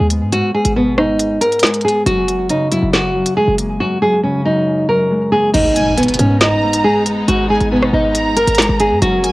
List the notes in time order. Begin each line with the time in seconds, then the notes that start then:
Already playing: G#2 G#3
0.00 D#2
0.10 B3, closed hi-hat
0.22 G#2
0.32 G#2 F#4, closed hi-hat
0.54 G#2 G#4
0.65 G#1, closed hi-hat
0.76 B2 B3
0.97 G#2 D#4, cross-stick
1.19 closed hi-hat
1.40 G#2 A#4, closed hi-hat
1.52 closed hi-hat
1.59 G#3, finger snap, snare, closed hi-hat
1.67 closed hi-hat
1.74 closed hi-hat
1.81 B3 G#4, closed hi-hat
1.88 closed hi-hat
2.06 F#1 F#2 F#4, closed hi-hat
2.28 F#2, closed hi-hat
2.49 C#3 D#4, closed hi-hat
2.71 F#2 E4, closed hi-hat
2.82 F#1
2.93 F#4, finger snap, snare, closed hi-hat
3.15 F#2
3.26 closed hi-hat
3.37 G#3 G#4
3.48 F#1
3.58 A#3, closed hi-hat
3.80 F#2 F#4
4.02 F#2 G#4
4.23 C#3 C#4
4.45 F#2 D#4
4.89 F#2 A#4
5.11 G#3
5.32 A#3 G#4
5.54 G#1 G#2 G#3 B3 D#4, closed hi-hat, crash, impact
5.76 G#2 G#5, closed hi-hat
5.97 B2 B3, closed hi-hat
6.03 closed hi-hat
6.09 closed hi-hat
6.14 closed hi-hat
6.19 G#2 C#4, closed hi-hat
6.41 D#4 A#5, finger snap, snare, closed hi-hat
6.63 G#2
6.73 closed hi-hat
6.84 G#3 G#4
7.06 B3, closed hi-hat
7.28 G#1 G#2 F#4, closed hi-hat
7.50 G#2 G#4 G#5
7.60 G#1, closed hi-hat
7.71 B2 B3
7.83 cross-stick
7.93 G#1 G#2 D#4
8.15 A#5, closed hi-hat
8.36 G#2 A#4, closed hi-hat
8.48 G#1, closed hi-hat
8.55 G#3, finger snap, snare, closed hi-hat
8.62 closed hi-hat
8.69 G#1
8.80 B3 G#4, closed hi-hat
8.91 G#2
9.02 F#1 F#2 F#3 C#4 F#4 G#4 A#4, closed hi-hat
9.23 F#2 G#5, closed hi-hat